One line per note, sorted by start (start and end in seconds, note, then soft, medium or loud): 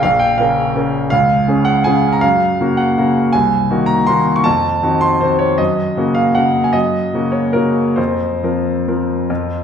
0.03 0.38 A#1 medium
0.03 0.21 F5 medium
0.19 0.38 G5 medium
0.38 0.72 C#3 soft
0.38 0.72 C#4 soft
0.38 0.72 A#4 soft
0.38 0.75 F5 medium
0.76 1.08 C#3 soft
0.76 1.08 C#4 soft
0.76 1.08 A#4 soft
1.10 1.47 C#2 medium
1.10 1.66 F5 medium
1.48 1.82 C#3 soft
1.48 1.82 C#4 soft
1.48 1.82 G#4 soft
1.65 1.85 F#5 medium
1.84 2.19 C#3 soft
1.84 2.20 C#4 soft
1.84 2.20 G#4 soft
1.84 2.13 G#5 medium
2.12 2.22 A#5 medium
2.21 2.59 F#2 medium
2.21 2.78 F5 medium
2.61 2.94 C#3 soft
2.61 2.94 A#3 soft
2.61 2.95 F#4 soft
2.77 3.33 F#5 medium
2.98 3.30 C#3 soft
2.98 3.30 A#3 soft
2.98 3.31 F#4 soft
3.33 3.69 C2 medium
3.33 3.88 G#5 medium
3.70 4.04 D#3 soft
3.70 4.04 A#3 soft
3.70 4.04 F#4 soft
3.86 4.07 A#5 medium
4.07 4.42 D#3 soft
4.07 4.42 A#3 soft
4.07 4.42 F#4 soft
4.07 4.36 C6 medium
4.36 4.45 C#6 medium
4.44 4.82 F2 medium
4.44 5.02 A5 medium
4.83 5.18 D#3 soft
4.83 5.18 C4 soft
4.83 5.18 F#4 soft
5.01 5.21 C6 medium
5.21 5.56 D#3 soft
5.21 5.56 C4 soft
5.21 5.56 F#4 soft
5.21 5.40 C5 medium
5.39 5.58 C#5 medium
5.58 5.96 F#2 medium
5.58 6.15 D#5 medium
5.97 6.32 C#3 soft
5.97 6.32 A#3 soft
5.97 6.32 F#4 soft
6.15 6.35 F5 medium
6.35 6.71 C#3 soft
6.35 6.71 A#3 soft
6.35 6.71 F#4 soft
6.35 6.64 F#5 medium
6.64 6.74 G#5 medium
6.73 7.12 F#2 medium
6.73 7.33 D#5 medium
7.14 7.50 C#3 soft
7.14 7.51 A#3 soft
7.14 7.51 F#4 soft
7.32 7.53 C#5 soft
7.53 7.94 C#3 soft
7.53 7.94 A#3 soft
7.53 7.94 F#4 soft
7.53 7.97 A#4 medium
7.96 8.42 F2 soft
7.96 9.64 C5 medium
8.43 8.83 F3 soft
8.43 8.83 C4 soft
8.43 8.83 A#4 soft
8.88 9.26 F3 soft
8.88 9.26 C4 soft
8.88 9.26 A#4 soft
9.30 9.64 F2 soft